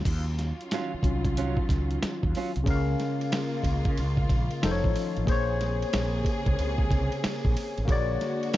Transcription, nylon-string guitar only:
0.73 0.91 F#3 medium
0.73 0.92 C#4 medium
0.73 0.92 F4 medium
1.38 1.57 F#3 medium
1.38 1.57 C#4 medium
1.38 1.57 F4 medium
2.37 2.51 F#3 medium
2.37 2.51 C#4 medium
2.37 2.51 F4 medium

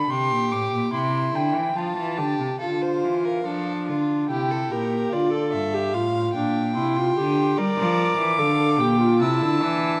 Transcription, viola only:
2.61 3.42 F4 medium
3.46 4.28 D4 medium
4.29 4.72 E4 medium
4.71 5.14 G4 medium
5.12 5.32 F4 medium
5.32 5.75 A4 medium
5.74 5.96 G4 medium
5.95 6.35 F4 medium
6.35 6.75 D4 medium
6.76 6.98 E4 medium
6.97 7.17 F4 medium
7.17 7.59 G4 medium
7.58 8.40 A#4 loud
8.39 8.80 A4 medium
8.80 9.00 G4 medium
9.00 9.23 F4 medium
9.22 9.64 E4 medium
9.63 10.00 D4 medium

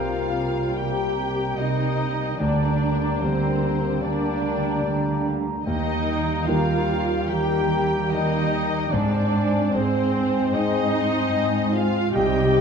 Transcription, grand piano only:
0.00 2.43 C2 soft
0.00 2.36 G3 soft
0.00 2.36 C4 soft
0.00 2.37 A#4 soft
2.40 3.19 D2 soft
3.22 5.63 G3 soft
3.22 5.63 A#3 soft
3.22 5.63 A#4 soft
5.67 6.46 D#2 soft
6.49 8.90 G3 soft
6.49 8.90 A#3 soft
6.49 8.90 A#4 soft
8.94 9.72 G#2 soft
9.75 12.12 G#3 soft
9.75 12.12 C4 soft
9.75 12.12 G#4 soft
12.15 12.61 C2 medium

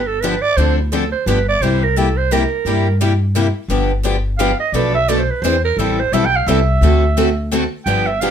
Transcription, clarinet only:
0.07 0.22 A4 medium
0.21 0.44 B4 medium
0.42 0.59 D5 loud
0.57 0.78 C5 medium
0.79 0.93 E4 soft
0.92 1.11 A4 medium
1.12 1.29 C5 medium
1.28 1.48 B4 medium
1.49 1.64 D5 medium
1.62 1.85 C5 medium
1.84 1.98 A#4 medium
1.97 2.19 A4 medium
2.18 2.34 C5 medium
2.33 3.01 A#4 medium
4.38 4.58 F5 medium
4.60 4.75 D#5 medium
4.74 4.94 D5 medium
4.95 5.10 E5 loud
5.09 5.21 D5 medium
5.19 5.32 C5 medium
5.31 5.44 B4 medium
5.42 5.64 C5 medium
5.65 5.80 A#4 medium
5.78 6.01 A4 medium
6.00 6.15 C5 medium
6.13 6.27 E5 medium
6.26 6.38 G5 loud
6.36 6.49 F5 medium
6.48 7.52 E5 medium
7.86 8.08 G5 medium
8.07 8.22 E5 medium
8.21 8.30 F5 medium

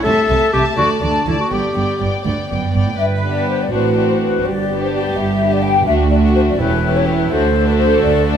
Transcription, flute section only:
2.98 3.04 E5 medium
3.25 3.48 D5 soft
3.49 3.60 C5 soft
3.61 3.73 D5 soft
3.72 4.08 B4 medium
4.09 4.21 C5 soft
4.21 4.44 B4 medium
4.44 4.80 D5 medium
4.82 4.93 C5 medium
4.92 5.16 D5 medium
5.14 5.51 E5 medium
5.52 5.64 D5 medium
5.62 5.87 G5 medium
5.86 5.92 E5 medium
6.10 6.16 D5 medium
6.35 6.40 C5 medium
6.48 6.59 D5 medium
6.59 6.95 B4 medium
6.96 7.07 C#5 medium
7.06 7.30 B4 medium
7.30 7.66 C5 medium
7.67 7.72 B4 medium
7.77 8.01 C5 medium
8.02 8.37 D5 medium

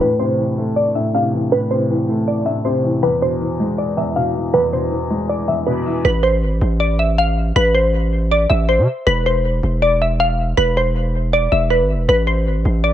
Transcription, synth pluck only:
0.01 0.18 B4 loud
0.19 0.73 C5 medium
0.76 0.93 D5 medium
0.95 1.12 E5 medium
1.15 1.50 F5 medium
1.52 1.69 B4 loud
1.71 2.24 C5 medium
2.28 2.44 D5 medium
2.46 2.63 E5 medium
2.65 3.00 C5 medium
3.03 3.19 B4 loud
3.22 3.75 C5 medium
3.78 3.95 D5 medium
3.98 4.14 E5 medium
4.16 4.52 F5 medium
4.54 4.70 B4 loud
4.73 5.26 C5 medium
5.29 5.46 D5 medium
5.48 5.65 E5 medium
5.66 6.02 B4 medium
6.05 6.21 B4 loud
6.23 6.77 C5 medium
6.80 6.97 D5 medium
6.99 7.16 E5 medium
7.18 7.54 F5 medium
7.56 7.72 B4 loud
7.75 8.28 C5 medium
8.31 8.48 D5 medium
8.50 8.66 E5 medium
8.69 9.04 C5 medium
9.07 9.23 B4 loud
9.26 9.79 C5 medium
9.82 9.99 D5 medium
10.02 10.18 E5 medium
10.20 10.55 F5 medium
10.57 10.74 B4 loud
10.77 11.30 C5 medium
11.33 11.50 D5 medium
11.52 11.69 E5 medium
11.70 12.06 B4 medium
12.09 12.25 B4 loud
12.27 12.80 C5 medium
12.84 12.93 D5 medium

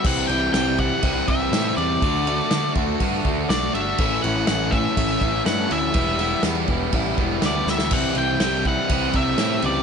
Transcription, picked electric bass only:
0.04 0.24 C2 loud
0.29 0.48 C2 medium
0.53 0.92 C2 loud
1.03 1.22 C2 loud
1.28 1.47 C2 medium
1.52 1.71 A2 medium
1.77 1.96 E2 medium
2.02 2.40 D2 loud
2.51 2.70 D3 medium
2.76 2.95 D2 loud
3.00 3.19 G2 loud
3.25 3.44 D2 medium
3.49 3.68 B1 medium
3.73 3.93 G1 medium
3.99 4.18 A1 medium
4.24 4.43 A1 medium
4.48 4.87 A1 medium
4.97 5.16 A1 loud
5.21 5.41 A1 medium
5.47 5.66 G2 loud
5.71 5.90 D2 medium
5.95 6.34 E1 loud
6.43 6.63 E2 medium
6.69 6.88 E1 loud
6.93 7.12 A1 loud
7.18 7.37 E1 medium
7.42 7.61 D2 medium
7.66 7.93 D2 medium
7.91 8.11 C2 medium
8.15 8.35 C2 medium
8.40 8.79 C2 medium
8.89 9.09 C2 loud
9.14 9.34 C2 medium
9.38 9.58 A2 medium
9.63 9.82 C#2 medium

